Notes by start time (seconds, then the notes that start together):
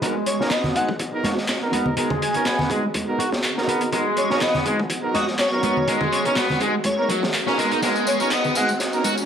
0.02 G#3 B3 D#4 F#4 G#4 A#4 D#5, kick, closed hi-hat, riser
0.26 C#5, closed hi-hat
0.39 B3 C#4 D#4 F#4 A#4 C#5, snare
0.50 B3 D#5, snare, clap, closed hi-hat
0.64 snare, low conga
0.75 G#3 B3 D#4 F#4 G#4 F#5, closed hi-hat
0.89 kick
0.99 kick, closed hi-hat
1.13 B3 D#4 F#4 A#4
1.24 F#4, snare, closed hi-hat, high conga
1.37 snare
1.47 snare, clap, closed hi-hat
1.62 B3 D#4 F#4 A#4
1.73 B3, closed hi-hat, high conga
1.86 low conga
1.97 G#3 B3 D#4 F#4 A#4, closed hi-hat
2.10 kick, low conga
2.22 G#5, closed hi-hat
2.34 B3 C#4 D#4 F#4 A#4, closed hi-hat
2.45 B3, snare, clap, closed hi-hat
2.59 snare, low conga
2.70 G#3 B3 D#4 F#4 G#4, kick, closed hi-hat
2.94 kick, closed hi-hat, high conga
3.08 B3 D#4 F#4 A#4
3.19 F#4, closed hi-hat
3.32 snare
3.43 clap, closed hi-hat
3.57 B3 D#4 F#4 A#4, snare
3.68 B3, closed hi-hat
3.81 closed hi-hat
3.92 G#3 B3 D#4 F#4 A#4 F#5, kick, closed hi-hat
4.17 C#5, closed hi-hat
4.30 B3 C#4 D#4 F#4 A#4 C#5, snare
4.41 B3 D#5, snare, clap, closed hi-hat
4.54 snare, low conga
4.65 G#3 B3 D#4 F#4 G#4, closed hi-hat
4.80 kick
4.90 kick, closed hi-hat
5.03 B3 D#4 F#4 A#4
5.14 F#4 D#5, snare, closed hi-hat, high conga
5.27 snare
5.39 C#5, snare, clap, closed hi-hat
5.52 B3 D#4 F#4 A#4
5.63 B3, closed hi-hat, high conga
5.77 low conga
5.87 G#3 B3 D#4 F#4 A#4, closed hi-hat
6.01 kick, low conga
6.12 C#5, closed hi-hat
6.25 B3 C#4 D#4 F#4 A#4 C#5, closed hi-hat
6.36 B3, snare, clap, closed hi-hat
6.50 snare, low conga
6.60 G#3 B3 D#4 F#4 G#4, kick, closed hi-hat
6.84 C#5, kick, closed hi-hat, high conga
6.98 B3 D#4 F#4 A#4 C#5
7.09 F#3, closed hi-hat
7.23 snare
7.34 clap, closed hi-hat
7.47 B3 C#4 D#4 F#4 A#4, snare
7.58 G#3, closed hi-hat
7.71 D#4, closed hi-hat
7.82 G#3 B3 D#4 F#4 A#4 D#5, snare, closed hi-hat, tambourine
7.96 tambourine
8.07 C#5, closed hi-hat, tambourine
8.20 B3 C#4 D#4 F#4 A#4 C#5, tambourine
8.31 B3 D#5, snare, clap, closed hi-hat, tambourine
8.44 tambourine, low conga
8.55 G#3 B3 D#4 F#4 G#4 F#5, closed hi-hat, tambourine
8.69 tambourine
8.80 snare, closed hi-hat, tambourine
8.93 B3 D#4 F#4 A#4, tambourine
9.04 F#4, closed hi-hat, tambourine, high conga
9.18 tambourine